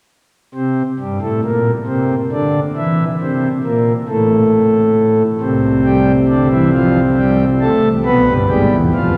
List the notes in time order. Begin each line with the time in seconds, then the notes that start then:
0.55 C3
0.99 G2
1.21 A2
1.43 A#2
1.87 C3
2.32 D3
2.77 E3
3.21 C3
3.65 A#2
4.09 A2
5.41 C2 C3
5.85 G3
6.29 D3
6.51 E3
6.72 F3
7.17 G3
7.61 A3
8.05 B1 B2 B3
8.26 G1 G2
8.49 G#1 G#2 G3
8.71 E1 E2
8.94 F1 F2 F3